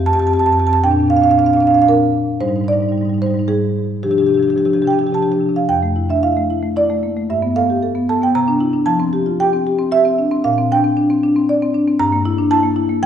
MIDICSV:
0, 0, Header, 1, 2, 480
1, 0, Start_track
1, 0, Key_signature, -1, "major"
1, 0, Tempo, 525394
1, 758, Time_signature, 3, 2, 24, 8
1, 3174, Tempo, 552486
1, 5574, Tempo, 525394
1, 9894, Tempo, 514139
1, 11849, End_track
2, 0, Start_track
2, 0, Title_t, "Marimba"
2, 0, Program_c, 0, 12
2, 0, Note_on_c, 0, 41, 49
2, 0, Note_on_c, 0, 60, 37
2, 1, Note_on_c, 0, 67, 42
2, 51, Note_off_c, 0, 41, 0
2, 51, Note_on_c, 0, 41, 45
2, 57, Note_on_c, 0, 81, 103
2, 62, Note_off_c, 0, 60, 0
2, 62, Note_on_c, 0, 60, 39
2, 72, Note_off_c, 0, 67, 0
2, 72, Note_on_c, 0, 67, 39
2, 120, Note_off_c, 0, 81, 0
2, 120, Note_on_c, 0, 81, 87
2, 135, Note_off_c, 0, 60, 0
2, 135, Note_on_c, 0, 60, 39
2, 142, Note_off_c, 0, 67, 0
2, 142, Note_on_c, 0, 67, 46
2, 150, Note_off_c, 0, 41, 0
2, 150, Note_on_c, 0, 41, 51
2, 178, Note_off_c, 0, 81, 0
2, 178, Note_on_c, 0, 81, 91
2, 203, Note_off_c, 0, 60, 0
2, 203, Note_off_c, 0, 67, 0
2, 203, Note_on_c, 0, 60, 42
2, 203, Note_on_c, 0, 67, 42
2, 244, Note_off_c, 0, 41, 0
2, 244, Note_on_c, 0, 41, 47
2, 245, Note_off_c, 0, 81, 0
2, 245, Note_on_c, 0, 81, 80
2, 262, Note_off_c, 0, 67, 0
2, 262, Note_on_c, 0, 67, 44
2, 274, Note_off_c, 0, 60, 0
2, 274, Note_on_c, 0, 60, 39
2, 305, Note_off_c, 0, 81, 0
2, 305, Note_on_c, 0, 81, 88
2, 324, Note_off_c, 0, 67, 0
2, 324, Note_on_c, 0, 67, 42
2, 342, Note_off_c, 0, 41, 0
2, 342, Note_on_c, 0, 41, 51
2, 347, Note_off_c, 0, 60, 0
2, 347, Note_on_c, 0, 60, 39
2, 361, Note_off_c, 0, 81, 0
2, 361, Note_on_c, 0, 81, 85
2, 391, Note_off_c, 0, 67, 0
2, 391, Note_on_c, 0, 67, 45
2, 420, Note_off_c, 0, 60, 0
2, 420, Note_on_c, 0, 60, 37
2, 422, Note_off_c, 0, 81, 0
2, 422, Note_on_c, 0, 81, 91
2, 445, Note_off_c, 0, 41, 0
2, 445, Note_on_c, 0, 41, 47
2, 457, Note_off_c, 0, 67, 0
2, 457, Note_on_c, 0, 67, 39
2, 480, Note_off_c, 0, 81, 0
2, 480, Note_on_c, 0, 81, 78
2, 487, Note_off_c, 0, 60, 0
2, 487, Note_on_c, 0, 60, 41
2, 522, Note_off_c, 0, 67, 0
2, 522, Note_on_c, 0, 67, 44
2, 531, Note_off_c, 0, 41, 0
2, 531, Note_on_c, 0, 41, 52
2, 544, Note_off_c, 0, 81, 0
2, 544, Note_on_c, 0, 81, 88
2, 559, Note_off_c, 0, 60, 0
2, 559, Note_on_c, 0, 60, 39
2, 590, Note_off_c, 0, 67, 0
2, 590, Note_on_c, 0, 67, 39
2, 609, Note_off_c, 0, 81, 0
2, 609, Note_on_c, 0, 81, 82
2, 627, Note_off_c, 0, 60, 0
2, 627, Note_on_c, 0, 60, 41
2, 637, Note_off_c, 0, 41, 0
2, 637, Note_on_c, 0, 41, 48
2, 651, Note_off_c, 0, 67, 0
2, 651, Note_on_c, 0, 67, 41
2, 667, Note_off_c, 0, 81, 0
2, 667, Note_on_c, 0, 81, 91
2, 724, Note_off_c, 0, 41, 0
2, 724, Note_off_c, 0, 67, 0
2, 725, Note_off_c, 0, 60, 0
2, 733, Note_off_c, 0, 81, 0
2, 764, Note_on_c, 0, 79, 97
2, 766, Note_on_c, 0, 46, 56
2, 766, Note_on_c, 0, 60, 48
2, 766, Note_on_c, 0, 62, 50
2, 833, Note_off_c, 0, 62, 0
2, 833, Note_on_c, 0, 62, 41
2, 843, Note_off_c, 0, 60, 0
2, 843, Note_on_c, 0, 60, 39
2, 846, Note_off_c, 0, 46, 0
2, 846, Note_on_c, 0, 46, 47
2, 904, Note_off_c, 0, 62, 0
2, 904, Note_on_c, 0, 62, 41
2, 916, Note_off_c, 0, 60, 0
2, 916, Note_on_c, 0, 60, 43
2, 938, Note_off_c, 0, 46, 0
2, 938, Note_on_c, 0, 46, 48
2, 970, Note_off_c, 0, 62, 0
2, 970, Note_on_c, 0, 62, 38
2, 983, Note_off_c, 0, 60, 0
2, 983, Note_on_c, 0, 60, 40
2, 989, Note_off_c, 0, 79, 0
2, 1005, Note_on_c, 0, 77, 93
2, 1019, Note_off_c, 0, 46, 0
2, 1019, Note_on_c, 0, 46, 43
2, 1044, Note_off_c, 0, 62, 0
2, 1044, Note_on_c, 0, 62, 42
2, 1051, Note_off_c, 0, 60, 0
2, 1051, Note_on_c, 0, 60, 39
2, 1065, Note_off_c, 0, 77, 0
2, 1065, Note_on_c, 0, 77, 76
2, 1111, Note_off_c, 0, 46, 0
2, 1111, Note_on_c, 0, 46, 46
2, 1114, Note_off_c, 0, 62, 0
2, 1114, Note_on_c, 0, 62, 39
2, 1115, Note_off_c, 0, 60, 0
2, 1115, Note_on_c, 0, 60, 38
2, 1129, Note_off_c, 0, 77, 0
2, 1129, Note_on_c, 0, 77, 81
2, 1183, Note_off_c, 0, 60, 0
2, 1183, Note_on_c, 0, 60, 40
2, 1186, Note_off_c, 0, 46, 0
2, 1186, Note_on_c, 0, 46, 43
2, 1188, Note_off_c, 0, 62, 0
2, 1188, Note_on_c, 0, 62, 44
2, 1198, Note_off_c, 0, 77, 0
2, 1198, Note_on_c, 0, 77, 73
2, 1256, Note_off_c, 0, 60, 0
2, 1256, Note_on_c, 0, 60, 38
2, 1260, Note_off_c, 0, 46, 0
2, 1260, Note_on_c, 0, 46, 46
2, 1266, Note_off_c, 0, 62, 0
2, 1266, Note_on_c, 0, 62, 38
2, 1269, Note_off_c, 0, 77, 0
2, 1269, Note_on_c, 0, 77, 84
2, 1320, Note_off_c, 0, 60, 0
2, 1320, Note_on_c, 0, 60, 43
2, 1336, Note_off_c, 0, 77, 0
2, 1336, Note_on_c, 0, 77, 74
2, 1342, Note_off_c, 0, 62, 0
2, 1342, Note_on_c, 0, 62, 42
2, 1351, Note_off_c, 0, 46, 0
2, 1351, Note_on_c, 0, 46, 42
2, 1401, Note_off_c, 0, 60, 0
2, 1401, Note_on_c, 0, 60, 37
2, 1402, Note_off_c, 0, 77, 0
2, 1402, Note_on_c, 0, 77, 75
2, 1414, Note_off_c, 0, 62, 0
2, 1414, Note_on_c, 0, 62, 42
2, 1433, Note_off_c, 0, 46, 0
2, 1433, Note_on_c, 0, 46, 49
2, 1466, Note_off_c, 0, 77, 0
2, 1466, Note_on_c, 0, 77, 75
2, 1479, Note_off_c, 0, 60, 0
2, 1479, Note_on_c, 0, 60, 42
2, 1482, Note_off_c, 0, 62, 0
2, 1482, Note_on_c, 0, 62, 45
2, 1505, Note_off_c, 0, 46, 0
2, 1505, Note_on_c, 0, 46, 46
2, 1527, Note_off_c, 0, 77, 0
2, 1527, Note_on_c, 0, 77, 81
2, 1537, Note_off_c, 0, 60, 0
2, 1537, Note_on_c, 0, 60, 36
2, 1558, Note_off_c, 0, 62, 0
2, 1558, Note_on_c, 0, 62, 42
2, 1583, Note_off_c, 0, 46, 0
2, 1583, Note_on_c, 0, 46, 45
2, 1593, Note_off_c, 0, 77, 0
2, 1593, Note_on_c, 0, 77, 72
2, 1601, Note_off_c, 0, 60, 0
2, 1601, Note_on_c, 0, 60, 40
2, 1629, Note_off_c, 0, 62, 0
2, 1629, Note_on_c, 0, 62, 45
2, 1661, Note_off_c, 0, 77, 0
2, 1661, Note_on_c, 0, 77, 85
2, 1689, Note_off_c, 0, 46, 0
2, 1689, Note_off_c, 0, 60, 0
2, 1690, Note_off_c, 0, 62, 0
2, 1691, Note_off_c, 0, 77, 0
2, 1720, Note_on_c, 0, 46, 57
2, 1722, Note_on_c, 0, 70, 86
2, 1724, Note_on_c, 0, 62, 49
2, 1725, Note_on_c, 0, 60, 51
2, 2178, Note_off_c, 0, 70, 0
2, 2182, Note_off_c, 0, 46, 0
2, 2184, Note_off_c, 0, 60, 0
2, 2184, Note_off_c, 0, 62, 0
2, 2197, Note_on_c, 0, 63, 46
2, 2198, Note_on_c, 0, 55, 47
2, 2198, Note_on_c, 0, 72, 84
2, 2199, Note_on_c, 0, 44, 58
2, 2265, Note_off_c, 0, 63, 0
2, 2265, Note_on_c, 0, 63, 36
2, 2274, Note_off_c, 0, 55, 0
2, 2274, Note_on_c, 0, 55, 39
2, 2288, Note_off_c, 0, 44, 0
2, 2288, Note_on_c, 0, 44, 48
2, 2339, Note_off_c, 0, 63, 0
2, 2339, Note_on_c, 0, 63, 40
2, 2352, Note_off_c, 0, 55, 0
2, 2352, Note_on_c, 0, 55, 39
2, 2388, Note_off_c, 0, 44, 0
2, 2388, Note_on_c, 0, 44, 51
2, 2413, Note_off_c, 0, 63, 0
2, 2413, Note_on_c, 0, 63, 35
2, 2427, Note_off_c, 0, 55, 0
2, 2427, Note_on_c, 0, 55, 35
2, 2430, Note_off_c, 0, 72, 0
2, 2450, Note_on_c, 0, 74, 85
2, 2479, Note_off_c, 0, 44, 0
2, 2479, Note_on_c, 0, 44, 44
2, 2491, Note_off_c, 0, 63, 0
2, 2491, Note_on_c, 0, 63, 37
2, 2498, Note_off_c, 0, 55, 0
2, 2498, Note_on_c, 0, 55, 40
2, 2564, Note_off_c, 0, 63, 0
2, 2564, Note_on_c, 0, 63, 35
2, 2575, Note_off_c, 0, 44, 0
2, 2575, Note_on_c, 0, 44, 49
2, 2583, Note_off_c, 0, 55, 0
2, 2583, Note_on_c, 0, 55, 36
2, 2639, Note_off_c, 0, 63, 0
2, 2639, Note_on_c, 0, 63, 38
2, 2667, Note_off_c, 0, 55, 0
2, 2667, Note_on_c, 0, 55, 43
2, 2680, Note_off_c, 0, 44, 0
2, 2680, Note_on_c, 0, 44, 45
2, 2720, Note_off_c, 0, 63, 0
2, 2720, Note_on_c, 0, 63, 36
2, 2752, Note_off_c, 0, 55, 0
2, 2752, Note_on_c, 0, 55, 37
2, 2765, Note_off_c, 0, 44, 0
2, 2765, Note_on_c, 0, 44, 52
2, 2787, Note_off_c, 0, 63, 0
2, 2787, Note_on_c, 0, 63, 39
2, 2826, Note_off_c, 0, 55, 0
2, 2826, Note_on_c, 0, 55, 42
2, 2855, Note_off_c, 0, 44, 0
2, 2855, Note_on_c, 0, 44, 44
2, 2868, Note_off_c, 0, 63, 0
2, 2868, Note_on_c, 0, 63, 37
2, 2908, Note_off_c, 0, 55, 0
2, 2908, Note_on_c, 0, 55, 39
2, 2917, Note_off_c, 0, 74, 0
2, 2940, Note_on_c, 0, 72, 77
2, 2952, Note_off_c, 0, 44, 0
2, 2952, Note_off_c, 0, 63, 0
2, 2952, Note_on_c, 0, 44, 47
2, 2952, Note_on_c, 0, 63, 39
2, 2982, Note_off_c, 0, 55, 0
2, 2982, Note_on_c, 0, 55, 41
2, 3019, Note_off_c, 0, 63, 0
2, 3019, Note_on_c, 0, 63, 39
2, 3047, Note_off_c, 0, 44, 0
2, 3047, Note_on_c, 0, 44, 45
2, 3065, Note_off_c, 0, 55, 0
2, 3065, Note_on_c, 0, 55, 37
2, 3100, Note_off_c, 0, 63, 0
2, 3100, Note_on_c, 0, 63, 41
2, 3147, Note_off_c, 0, 63, 0
2, 3148, Note_off_c, 0, 44, 0
2, 3148, Note_off_c, 0, 55, 0
2, 3171, Note_off_c, 0, 72, 0
2, 3178, Note_on_c, 0, 55, 46
2, 3179, Note_on_c, 0, 68, 77
2, 3181, Note_on_c, 0, 44, 55
2, 3181, Note_on_c, 0, 63, 46
2, 3641, Note_off_c, 0, 68, 0
2, 3645, Note_off_c, 0, 55, 0
2, 3646, Note_off_c, 0, 63, 0
2, 3647, Note_off_c, 0, 44, 0
2, 3658, Note_on_c, 0, 48, 54
2, 3658, Note_on_c, 0, 67, 72
2, 3659, Note_on_c, 0, 62, 40
2, 3661, Note_on_c, 0, 53, 42
2, 3727, Note_off_c, 0, 48, 0
2, 3727, Note_on_c, 0, 48, 45
2, 3728, Note_off_c, 0, 67, 0
2, 3728, Note_on_c, 0, 67, 58
2, 3732, Note_off_c, 0, 62, 0
2, 3732, Note_on_c, 0, 62, 33
2, 3737, Note_off_c, 0, 53, 0
2, 3737, Note_on_c, 0, 53, 33
2, 3788, Note_off_c, 0, 67, 0
2, 3788, Note_on_c, 0, 67, 61
2, 3803, Note_off_c, 0, 62, 0
2, 3803, Note_on_c, 0, 62, 36
2, 3804, Note_off_c, 0, 48, 0
2, 3804, Note_on_c, 0, 48, 45
2, 3821, Note_off_c, 0, 53, 0
2, 3821, Note_on_c, 0, 53, 35
2, 3862, Note_off_c, 0, 67, 0
2, 3862, Note_on_c, 0, 67, 54
2, 3878, Note_off_c, 0, 62, 0
2, 3878, Note_on_c, 0, 62, 31
2, 3884, Note_off_c, 0, 48, 0
2, 3884, Note_on_c, 0, 48, 44
2, 3897, Note_off_c, 0, 53, 0
2, 3897, Note_on_c, 0, 53, 34
2, 3928, Note_off_c, 0, 67, 0
2, 3928, Note_on_c, 0, 67, 58
2, 3954, Note_off_c, 0, 62, 0
2, 3954, Note_on_c, 0, 62, 35
2, 3957, Note_off_c, 0, 48, 0
2, 3957, Note_on_c, 0, 48, 44
2, 3974, Note_off_c, 0, 53, 0
2, 3974, Note_on_c, 0, 53, 37
2, 4001, Note_off_c, 0, 67, 0
2, 4001, Note_on_c, 0, 67, 54
2, 4008, Note_off_c, 0, 62, 0
2, 4008, Note_on_c, 0, 62, 30
2, 4046, Note_off_c, 0, 48, 0
2, 4046, Note_on_c, 0, 48, 44
2, 4047, Note_off_c, 0, 53, 0
2, 4047, Note_on_c, 0, 53, 33
2, 4065, Note_off_c, 0, 67, 0
2, 4065, Note_on_c, 0, 67, 63
2, 4084, Note_off_c, 0, 62, 0
2, 4084, Note_on_c, 0, 62, 34
2, 4119, Note_off_c, 0, 48, 0
2, 4119, Note_on_c, 0, 48, 45
2, 4121, Note_off_c, 0, 53, 0
2, 4121, Note_on_c, 0, 53, 38
2, 4132, Note_off_c, 0, 67, 0
2, 4132, Note_on_c, 0, 67, 56
2, 4155, Note_off_c, 0, 62, 0
2, 4155, Note_on_c, 0, 62, 34
2, 4198, Note_off_c, 0, 67, 0
2, 4198, Note_on_c, 0, 67, 64
2, 4201, Note_off_c, 0, 48, 0
2, 4201, Note_off_c, 0, 53, 0
2, 4201, Note_on_c, 0, 48, 44
2, 4201, Note_on_c, 0, 53, 36
2, 4228, Note_off_c, 0, 62, 0
2, 4228, Note_on_c, 0, 62, 35
2, 4268, Note_off_c, 0, 67, 0
2, 4268, Note_on_c, 0, 67, 56
2, 4277, Note_off_c, 0, 53, 0
2, 4277, Note_on_c, 0, 53, 38
2, 4282, Note_off_c, 0, 48, 0
2, 4282, Note_on_c, 0, 48, 44
2, 4298, Note_off_c, 0, 62, 0
2, 4298, Note_on_c, 0, 62, 32
2, 4343, Note_off_c, 0, 67, 0
2, 4343, Note_on_c, 0, 67, 64
2, 4355, Note_off_c, 0, 53, 0
2, 4355, Note_on_c, 0, 53, 35
2, 4360, Note_off_c, 0, 48, 0
2, 4360, Note_on_c, 0, 48, 46
2, 4371, Note_off_c, 0, 62, 0
2, 4371, Note_on_c, 0, 62, 35
2, 4390, Note_on_c, 0, 79, 78
2, 4417, Note_off_c, 0, 67, 0
2, 4417, Note_on_c, 0, 67, 60
2, 4426, Note_off_c, 0, 53, 0
2, 4426, Note_on_c, 0, 53, 35
2, 4438, Note_off_c, 0, 62, 0
2, 4438, Note_on_c, 0, 62, 32
2, 4446, Note_off_c, 0, 48, 0
2, 4446, Note_on_c, 0, 48, 45
2, 4490, Note_off_c, 0, 67, 0
2, 4490, Note_on_c, 0, 67, 61
2, 4507, Note_off_c, 0, 53, 0
2, 4507, Note_on_c, 0, 53, 34
2, 4526, Note_off_c, 0, 48, 0
2, 4526, Note_on_c, 0, 48, 43
2, 4549, Note_off_c, 0, 62, 0
2, 4558, Note_off_c, 0, 67, 0
2, 4558, Note_on_c, 0, 67, 56
2, 4578, Note_on_c, 0, 62, 30
2, 4589, Note_off_c, 0, 53, 0
2, 4589, Note_on_c, 0, 53, 34
2, 4608, Note_off_c, 0, 48, 0
2, 4608, Note_on_c, 0, 48, 49
2, 4618, Note_off_c, 0, 79, 0
2, 4622, Note_off_c, 0, 67, 0
2, 4622, Note_on_c, 0, 67, 58
2, 4626, Note_on_c, 0, 81, 72
2, 4652, Note_off_c, 0, 62, 0
2, 4652, Note_on_c, 0, 62, 34
2, 4669, Note_off_c, 0, 53, 0
2, 4669, Note_on_c, 0, 53, 33
2, 4687, Note_off_c, 0, 48, 0
2, 4687, Note_on_c, 0, 48, 46
2, 4696, Note_off_c, 0, 67, 0
2, 4696, Note_on_c, 0, 67, 54
2, 4719, Note_off_c, 0, 62, 0
2, 4719, Note_on_c, 0, 62, 33
2, 4749, Note_off_c, 0, 53, 0
2, 4749, Note_on_c, 0, 53, 37
2, 4772, Note_off_c, 0, 48, 0
2, 4772, Note_on_c, 0, 48, 49
2, 4776, Note_off_c, 0, 67, 0
2, 4776, Note_on_c, 0, 67, 63
2, 4785, Note_off_c, 0, 62, 0
2, 4785, Note_on_c, 0, 62, 36
2, 4827, Note_off_c, 0, 53, 0
2, 4827, Note_on_c, 0, 53, 32
2, 4831, Note_off_c, 0, 67, 0
2, 4844, Note_off_c, 0, 48, 0
2, 4844, Note_on_c, 0, 48, 44
2, 4855, Note_off_c, 0, 62, 0
2, 4855, Note_on_c, 0, 62, 31
2, 4902, Note_off_c, 0, 53, 0
2, 4902, Note_on_c, 0, 53, 36
2, 4925, Note_off_c, 0, 62, 0
2, 4925, Note_on_c, 0, 62, 34
2, 4926, Note_off_c, 0, 48, 0
2, 4926, Note_on_c, 0, 48, 49
2, 4970, Note_off_c, 0, 81, 0
2, 4988, Note_on_c, 0, 77, 73
2, 4991, Note_off_c, 0, 53, 0
2, 4991, Note_on_c, 0, 53, 33
2, 4992, Note_off_c, 0, 62, 0
2, 4992, Note_on_c, 0, 62, 30
2, 5005, Note_off_c, 0, 48, 0
2, 5005, Note_on_c, 0, 48, 42
2, 5069, Note_off_c, 0, 48, 0
2, 5070, Note_off_c, 0, 62, 0
2, 5071, Note_off_c, 0, 53, 0
2, 5098, Note_on_c, 0, 79, 90
2, 5100, Note_on_c, 0, 41, 63
2, 5106, Note_off_c, 0, 77, 0
2, 5217, Note_on_c, 0, 57, 52
2, 5333, Note_on_c, 0, 64, 49
2, 5409, Note_off_c, 0, 57, 0
2, 5441, Note_off_c, 0, 79, 0
2, 5450, Note_on_c, 0, 62, 46
2, 5458, Note_on_c, 0, 76, 79
2, 5525, Note_off_c, 0, 64, 0
2, 5568, Note_on_c, 0, 77, 84
2, 5569, Note_on_c, 0, 64, 52
2, 5571, Note_off_c, 0, 62, 0
2, 5575, Note_off_c, 0, 76, 0
2, 5696, Note_on_c, 0, 57, 47
2, 5766, Note_off_c, 0, 64, 0
2, 5816, Note_on_c, 0, 64, 52
2, 5889, Note_off_c, 0, 57, 0
2, 5933, Note_on_c, 0, 57, 47
2, 6009, Note_off_c, 0, 64, 0
2, 6035, Note_off_c, 0, 77, 0
2, 6057, Note_on_c, 0, 64, 58
2, 6060, Note_on_c, 0, 74, 91
2, 6128, Note_off_c, 0, 57, 0
2, 6180, Note_on_c, 0, 57, 52
2, 6251, Note_off_c, 0, 64, 0
2, 6300, Note_on_c, 0, 58, 46
2, 6373, Note_off_c, 0, 57, 0
2, 6421, Note_off_c, 0, 58, 0
2, 6425, Note_on_c, 0, 57, 53
2, 6503, Note_off_c, 0, 41, 0
2, 6523, Note_off_c, 0, 74, 0
2, 6543, Note_off_c, 0, 57, 0
2, 6544, Note_on_c, 0, 43, 64
2, 6546, Note_on_c, 0, 76, 77
2, 6659, Note_on_c, 0, 59, 54
2, 6774, Note_off_c, 0, 76, 0
2, 6784, Note_on_c, 0, 69, 56
2, 6784, Note_on_c, 0, 77, 87
2, 6852, Note_off_c, 0, 59, 0
2, 6912, Note_on_c, 0, 67, 49
2, 6975, Note_off_c, 0, 69, 0
2, 7026, Note_on_c, 0, 69, 57
2, 7027, Note_off_c, 0, 67, 0
2, 7141, Note_on_c, 0, 59, 54
2, 7217, Note_off_c, 0, 69, 0
2, 7246, Note_off_c, 0, 77, 0
2, 7270, Note_on_c, 0, 69, 59
2, 7270, Note_on_c, 0, 81, 95
2, 7335, Note_off_c, 0, 59, 0
2, 7387, Note_off_c, 0, 81, 0
2, 7389, Note_on_c, 0, 59, 55
2, 7398, Note_on_c, 0, 79, 85
2, 7459, Note_off_c, 0, 69, 0
2, 7477, Note_off_c, 0, 43, 0
2, 7506, Note_off_c, 0, 59, 0
2, 7506, Note_on_c, 0, 82, 109
2, 7508, Note_on_c, 0, 48, 77
2, 7511, Note_off_c, 0, 79, 0
2, 7621, Note_on_c, 0, 62, 60
2, 7738, Note_on_c, 0, 64, 58
2, 7813, Note_off_c, 0, 62, 0
2, 7856, Note_on_c, 0, 62, 50
2, 7932, Note_off_c, 0, 64, 0
2, 7964, Note_off_c, 0, 82, 0
2, 7969, Note_on_c, 0, 81, 103
2, 7970, Note_off_c, 0, 48, 0
2, 7972, Note_on_c, 0, 53, 76
2, 7979, Note_off_c, 0, 62, 0
2, 8096, Note_on_c, 0, 60, 64
2, 8217, Note_on_c, 0, 67, 63
2, 8292, Note_off_c, 0, 60, 0
2, 8338, Note_on_c, 0, 65, 55
2, 8414, Note_off_c, 0, 67, 0
2, 8439, Note_off_c, 0, 81, 0
2, 8462, Note_off_c, 0, 65, 0
2, 8465, Note_on_c, 0, 79, 104
2, 8466, Note_on_c, 0, 67, 64
2, 8584, Note_on_c, 0, 60, 60
2, 8657, Note_off_c, 0, 67, 0
2, 8708, Note_on_c, 0, 67, 64
2, 8775, Note_off_c, 0, 60, 0
2, 8818, Note_on_c, 0, 60, 59
2, 8895, Note_off_c, 0, 67, 0
2, 8922, Note_off_c, 0, 79, 0
2, 8936, Note_on_c, 0, 67, 67
2, 8939, Note_on_c, 0, 76, 116
2, 9008, Note_off_c, 0, 60, 0
2, 9059, Note_on_c, 0, 60, 65
2, 9127, Note_off_c, 0, 67, 0
2, 9182, Note_on_c, 0, 62, 55
2, 9249, Note_off_c, 0, 60, 0
2, 9299, Note_off_c, 0, 62, 0
2, 9300, Note_on_c, 0, 60, 61
2, 9375, Note_off_c, 0, 53, 0
2, 9397, Note_off_c, 0, 76, 0
2, 9416, Note_on_c, 0, 77, 95
2, 9419, Note_off_c, 0, 60, 0
2, 9421, Note_on_c, 0, 46, 77
2, 9543, Note_on_c, 0, 60, 67
2, 9648, Note_off_c, 0, 77, 0
2, 9667, Note_on_c, 0, 62, 64
2, 9670, Note_on_c, 0, 79, 107
2, 9732, Note_off_c, 0, 60, 0
2, 9779, Note_on_c, 0, 60, 57
2, 9854, Note_off_c, 0, 62, 0
2, 9897, Note_off_c, 0, 60, 0
2, 9899, Note_on_c, 0, 62, 66
2, 10021, Note_on_c, 0, 60, 62
2, 10090, Note_off_c, 0, 62, 0
2, 10125, Note_off_c, 0, 79, 0
2, 10145, Note_on_c, 0, 62, 67
2, 10212, Note_off_c, 0, 60, 0
2, 10263, Note_on_c, 0, 60, 61
2, 10333, Note_off_c, 0, 62, 0
2, 10387, Note_on_c, 0, 74, 77
2, 10452, Note_off_c, 0, 60, 0
2, 10508, Note_on_c, 0, 60, 65
2, 10573, Note_off_c, 0, 74, 0
2, 10621, Note_on_c, 0, 62, 56
2, 10693, Note_off_c, 0, 60, 0
2, 10738, Note_off_c, 0, 62, 0
2, 10745, Note_on_c, 0, 60, 63
2, 10819, Note_off_c, 0, 46, 0
2, 10855, Note_on_c, 0, 82, 120
2, 10859, Note_off_c, 0, 60, 0
2, 10859, Note_on_c, 0, 43, 86
2, 10976, Note_on_c, 0, 58, 66
2, 11098, Note_on_c, 0, 64, 72
2, 11166, Note_off_c, 0, 58, 0
2, 11218, Note_on_c, 0, 62, 61
2, 11287, Note_off_c, 0, 64, 0
2, 11314, Note_off_c, 0, 82, 0
2, 11332, Note_on_c, 0, 64, 64
2, 11335, Note_off_c, 0, 62, 0
2, 11335, Note_on_c, 0, 81, 123
2, 11449, Note_on_c, 0, 58, 64
2, 11524, Note_off_c, 0, 64, 0
2, 11570, Note_on_c, 0, 64, 66
2, 11643, Note_off_c, 0, 58, 0
2, 11692, Note_on_c, 0, 58, 63
2, 11765, Note_off_c, 0, 64, 0
2, 11788, Note_off_c, 0, 43, 0
2, 11796, Note_off_c, 0, 81, 0
2, 11814, Note_off_c, 0, 58, 0
2, 11818, Note_on_c, 0, 53, 83
2, 11820, Note_on_c, 0, 79, 118
2, 11849, Note_off_c, 0, 53, 0
2, 11849, Note_off_c, 0, 79, 0
2, 11849, End_track
0, 0, End_of_file